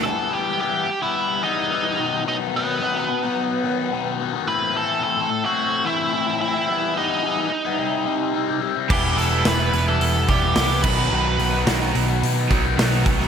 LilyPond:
<<
  \new Staff \with { instrumentName = "Lead electric guitar" } { \time 4/4 \key e \minor \tempo 4 = 108 <a' a''>8 <g' g''>8 <g' g''>8. <e' e''>8. <dis' dis''>4. | <dis' dis''>8 <b b'>2. r8 | <b' b''>8 <a' a''>8 <a' a''>8. <fis' fis''>8. <e' e''>4 <e' e''>8~ | <e' e''>8 <dis' dis''>2. r8 |
<g' g''>8 <a' a''>8 <b' b''>8. <a' a''>8. <g' g''>4 <b' b''>8~ | <b' b''>4 r2. | }
  \new Staff \with { instrumentName = "Overdriven electric guitar" } { \time 4/4 \key e \minor <e g b e'>8 <e g b e'>8 <e g b e'>16 <g b e'>8 <g b e'>8. <e g b e'>8 <e g b e'>16 <g b e'>16 <b, dis fis b dis'>16 <fis b dis'>16 | <b, dis fis b dis'>8 <dis fis b dis'>8 <b, dis fis b dis'>16 <fis b dis'>8 <fis b dis'>8. <dis fis b dis'>8 <b, dis fis b dis'>16 <fis b dis'>16 <dis fis b dis'>16 <fis b dis'>16 | <a, e a c' e'>8 <e a c' e'>8 <a, e a c' e'>16 <a c' e'>8 <a c' e'>8. <e a c' e'>8 <a, e a c' e'>16 <a c' e'>16 <e a c' e'>16 <a c' e'>16 | <e g b e'>8 <e g b e'>8 <e g b e'>16 <g b e'>8 <g b e'>16 <c g c' e'>8 <c g c' e'>8 <c g c' e'>16 <g c' e'>16 <c g c' e'>16 <g c' e'>16 |
<e g b e'>8 <e g b e'>8 <e g b e'>16 <g b e'>8 <g b e'>8. <e g b e'>8 <e g b e'>16 <g b e'>16 <b, dis fis b dis'>16 <fis b dis'>16 | <b, dis fis b dis'>8 <dis fis b dis'>8 <b, dis fis b dis'>16 <fis b dis'>8 <fis b dis'>8. <dis fis b dis'>8 <b, dis fis b dis'>16 <fis b dis'>16 <dis fis b dis'>16 <fis b dis'>16 | }
  \new Staff \with { instrumentName = "Overdriven electric guitar" } { \time 4/4 \key e \minor r1 | r1 | r1 | r1 |
<e g b e'>16 <g b e'>8 <g b e'>16 <e g b e'>8 <e g b e'>8. r16 <e g b e'>8 <e g b e'>8 <b, dis fis b dis'>16 <fis b dis'>16 | <b, dis fis b dis'>16 <fis b dis'>8 <fis b dis'>16 <b, dis fis b dis'>8 <dis fis b dis'>8. r16 <dis fis b dis'>8 <b, dis fis b dis'>8 <dis fis b dis'>16 <fis b dis'>16 | }
  \new Staff \with { instrumentName = "Distorted electric guitar" } { \clef bass \time 4/4 \key e \minor r1 | r1 | r1 | r1 |
<e g b e'>4. <e g b e'>4. <e g b e'>8 <b, dis fis b dis'>8~ | <b, dis fis b dis'>4 <b, dis fis b dis'>4. <b, dis fis b dis'>4 r8 | }
  \new Staff \with { instrumentName = "Picked electric bass" } { \clef bass \time 4/4 \key e \minor r1 | r1 | r1 | r1 |
e,,8 e,,8 e,,8 e,,8 e,,8 e,,8 c,8 b,,8 | b,,8 b,,8 b,,8 b,,8 b,8 b,,8 b,,8 b,,8 | }
  \new DrumStaff \with { instrumentName = "Drums" } \drummode { \time 4/4 r4 r4 r4 r4 | r4 r4 r4 r4 | r4 r4 r4 r4 | r4 r4 r4 r4 |
<cymc bd>8 hho8 <hho sn>8 hho8 hho8 <hho bd>8 <hho sn>8 <cymc bd>8 | r8 hho8 <hho sn>8 hho8 hho8 <hho bd>8 <hho sn>8 <hho bd>16 sn16 | }
>>